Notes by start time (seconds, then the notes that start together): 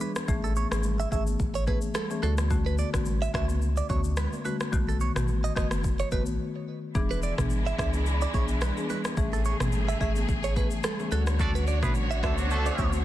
0.01 B4, low conga, shaker
0.16 cross-stick, high conga, shaker
0.28 A1 E3 A3 C#4 G#4, kick, low conga, shaker
0.44 A4, shaker
0.56 C#5, high conga, shaker
0.71 G#1 E3 A3 C#4 G#4, cross-stick, high conga, shaker
0.83 low conga, shaker
1.00 E5, shaker
1.11 G#1 E3 A3 C#4 G#4 E5, kick, shaker
1.27 high conga, shaker
1.40 A1, kick, shaker
1.55 C#5, shaker
1.67 E3 A3 C#4 G#4 B4, kick, high conga, shaker
1.82 shaker
1.94 A4, cross-stick, low conga, shaker
2.10 E3 A3 C#4 G#4, high conga, shaker
2.23 D2 D3 A3 C#4 F#4 A4, low conga, shaker
2.38 cross-stick, high conga, shaker
2.50 D3 A3 C#4 F#4, kick, low conga, shaker
2.66 B4, shaker
2.78 D5, high conga, shaker
2.93 A1 D3 A3 C#4 F#4, kick, cross-stick, high conga, shaker
3.06 low conga, shaker
3.22 E5, shaker
3.34 C#2 D3 A3 C#4 F#4 E5, kick, cross-stick, shaker
3.49 high conga, shaker
3.62 shaker
3.77 D5, shaker
3.89 D2 D3 A3 C#4 F#4 C#5, kick, high conga, shaker
4.04 shaker
4.17 B4, cross-stick, low conga, shaker
4.33 high conga, shaker
4.44 D3 A3 C#4 F#4 B4, low conga, shaker
4.60 cross-stick, high conga, shaker
4.72 B1 D#3 A3 B3 F#4, kick, low conga, shaker
4.89 A4, shaker
5.01 C#5, high conga, shaker
5.16 A1 D#3 A3 B3 F#4, cross-stick, mid tom, high conga, shaker
5.28 low conga, shaker
5.44 D#5, shaker
5.56 F#1 D#3 A3 B3 F#4 D#5, kick, cross-stick, shaker
5.71 cross-stick, high conga, shaker
5.84 kick, shaker
5.99 C#5, shaker
6.12 F#1 D#3 A3 B3 F#4 B4, kick, high conga, shaker
6.26 A1, shaker
6.95 E1 E3 G#3 B3 D4 E4 G#4, kick, low conga, shaker
7.11 B4, shaker
7.23 D5, shaker
7.38 G#1 E3 B3 D4 G#4, kick, cross-stick, mid tom, high conga, shaker
7.50 low conga, shaker
7.66 E5, shaker
7.78 C#2 E3 B3 D4 G#4 E5, kick, cross-stick, shaker
7.94 high conga, shaker
8.06 shaker
8.21 D5, shaker
8.34 B1 E3 B3 D4 G#4 C#5, kick, high conga, shaker
8.48 shaker
8.61 B4, cross-stick, low conga, shaker
8.76 E3 B3 D4 G#4, high conga, shaker
8.90 B4, low conga, shaker
9.05 cross-stick, high conga, shaker
9.17 A1 C#3 E3 A3 C#4 G#4, kick, low conga, shaker
9.33 A4, shaker
9.45 C#5, shaker
9.60 G#1 E3 A3 C#4 G#4, cross-stick, mid tom, high conga, shaker
9.72 low conga, shaker
9.88 E5, shaker
10.00 G#1 E3 A3 C#4 G#4 E5, kick, shaker
10.16 high conga, shaker
10.29 A1, kick, shaker
10.44 C#5, shaker
10.56 E3 A3 C#4 G#4 B4, kick, high conga, shaker
10.71 shaker
10.84 A4, cross-stick, low conga, shaker
10.99 E3 A3 C#4 G#4, high conga, shaker
11.12 D2 D3 A3 C#4 D4 F#4 A4 C#5, low conga, shaker
11.27 cross-stick, high conga, shaker
11.39 D3 A3 C#4 D4 F#4 A4 D5, kick, swell, low conga, shaker
11.55 B4, shaker
11.67 D5, shaker
11.82 A1 D3 A3 B3 C#4 E4 F#4 G#4 B4, kick, cross-stick, mid tom, high conga, shaker
11.95 low conga, shaker
12.11 E5, shaker
12.23 C#2 D3 A3 C#4 D4 F#4 A4 E5, kick, cross-stick, shaker
12.38 F#3 D4 F#4, high conga, shaker
12.51 A3 D4 F#4 A4, shaker
12.66 D5, shaker
12.78 D2 D3 A3 C#4 F#4 C#5, kick, high conga, shaker
12.93 shaker